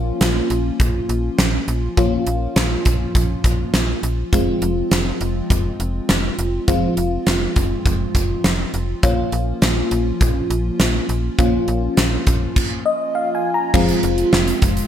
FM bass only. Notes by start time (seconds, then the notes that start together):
Already playing: A#1
0.21 A#1
0.50 A#1
0.80 A#1
1.09 A#1
1.39 A#1
1.68 A#1
1.97 A#1
2.27 A#1
2.56 A#1
2.86 A#1
3.15 A#1
3.44 A#1
3.74 A#1
4.03 A#1
4.33 F1
4.62 F1
4.91 F1
5.21 F1
5.50 F1
5.80 F1
6.09 F1
6.39 F1
6.68 F1
6.97 F1
7.27 F1
7.56 F1
7.86 F1
8.15 F1
8.44 F1
8.74 F1
9.03 A#1
9.32 A#1
9.62 A#1
9.92 A#1
10.21 A#1
10.50 A#1
10.80 A#1
11.09 A#1
11.39 A#1
11.68 A#1
11.97 A#1
12.27 A#1
13.74 F1
14.03 F1
14.33 F1
14.62 F1